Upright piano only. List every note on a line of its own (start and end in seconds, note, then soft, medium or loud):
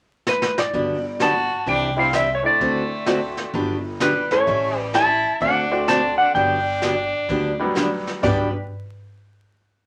1.96 2.11 G3 medium
1.96 2.12 C4 medium
1.96 2.12 D4 medium
1.96 2.12 E4 medium
2.43 3.03 A3 medium
2.43 3.03 C4 medium
2.43 3.03 D4 medium
2.43 3.04 E4 medium
3.06 3.53 A3 medium
3.06 3.53 C4 medium
3.06 3.54 D4 medium
3.06 3.54 F#4 medium
4.31 4.46 A3 medium
4.31 4.46 C#4 medium
4.31 4.46 E4 medium
4.31 4.46 A4 medium
5.71 6.31 A3 medium
5.71 6.31 C4 medium
5.71 6.32 D4 medium
5.71 6.32 F#4 medium
7.59 8.20 F#3 medium
7.59 8.20 G3 medium
7.59 8.20 B3 medium
7.59 8.20 D4 medium
8.22 8.50 G3 medium
8.22 8.50 B3 medium
8.22 8.50 D4 medium
8.22 8.51 F#4 medium
8.22 8.51 G4 medium